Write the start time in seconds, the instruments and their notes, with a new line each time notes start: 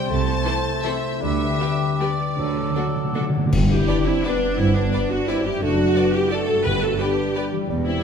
Already playing: bassoon G3, harp G3 G4 C5 G5, cor anglais C5, flute C6
0.01 harp C4
0.09 double bass section C2, cello section C3, harp C3, bassoon A3, violin section A5
0.19 harp C4
0.27 harp E4
0.36 harp A4
0.45 viola section E3 E4, french horn section C4 E4, violin section A4 C5
0.56 harp E5
0.66 harp A5
0.75 harp E5
0.83 viola section E3 E4, french horn section C4 E4, violin section A4 C5 E5, harp C5
0.94 harp A4
1.03 harp E4
1.12 harp C4
1.21 double bass section D2, harp D3, cello section D3, bassoon G3, cor anglais B4, violin section E5, flute D6
1.31 harp D4
1.40 harp G4
1.50 harp B4
1.59 viola section G3 D4, french horn section B3 G4, violin section G4 B4, harp D5
1.71 harp G5
1.80 harp B5
1.91 harp G5
2.00 viola section G3 D4, french horn section B3 G4, violin section G4 B4 D5, harp D5
2.10 harp B4
2.29 harp D4
2.38 double bass section D2, timpani D3, cello section D3, harp D3, bassoon F#3, cor anglais A4
2.46 timpani D3, harp D4
2.54 timpani D3, harp F#4
2.62 timpani D3
2.67 timpani D3, harp A4
2.75 french horn section A3 F#4, viola section A3 D4, violin section F#4 A4, harp D5
2.87 timpani D3, harp F#5
2.96 timpani D3, harp A5
3.04 timpani D3, harp F#5
3.13 timpani D3, french horn section A3 F#4, viola section A3 D4, violin section F#4 A4, harp D5
3.21 timpani D3
3.25 harp A4
3.30 timpani D3
3.35 harp G2 F#4, timpani D3
3.39 harp B3
3.44 timpani D3, harp D4
3.49 cello section G2, timpani G2, harp G4
3.53 double bass section G1, concert bass drum, crash
3.69 french horn section E4, viola section G4
3.87 bassoon D4, violin section B4 D5 G5, cor anglais D5, flute B5
4.05 french horn section C4, viola section E4
4.24 bassoon B3, french horn section B3, viola section D4, violin section B4 D5 G5, cor anglais D5, flute B5
4.58 double bass section G1, cello section G2, french horn section C4, viola section E4
4.75 french horn section B3, viola section D4
4.93 violin section B4 D5 G5, cor anglais D5, flute B5
5.11 french horn section D4, viola section F#4
5.28 bassoon G3, french horn section C4, viola section E4, violin section B4 D5 G5, cor anglais D5, flute B5
5.44 harp F#2, french horn section E4, viola section G4
5.49 harp A3
5.53 harp D4
5.58 french horn section D4, harp A4
5.62 double bass section F#1, cello section F#2, bassoon A3, viola section F#4
5.95 bassoon B3, violin section D5 A5, cor anglais D5, flute A5
6.15 french horn section E4, viola section G4
6.31 bassoon A3, french horn section F#4, viola section A4, violin section D5 A5, cor anglais D5, flute A5
6.48 harp G2
6.53 harp G3
6.57 harp D4
6.62 harp B4
6.66 double bass section G1, cello section G2, timpani G2, french horn section G4, viola section B4
6.83 french horn section F#4, viola section A4
6.99 bassoon B3, french horn section D4, viola section G4, violin section B4 D5 G5, cor anglais B4, flute G5
7.35 bassoon G3, violin section B4 D5 G5, cor anglais B4, flute G5
7.52 harp E3
7.56 harp G3
7.60 harp E4
7.65 harp B4
7.69 double bass section E1, cello section E2, bassoon G3
7.85 french horn section C4, viola section E4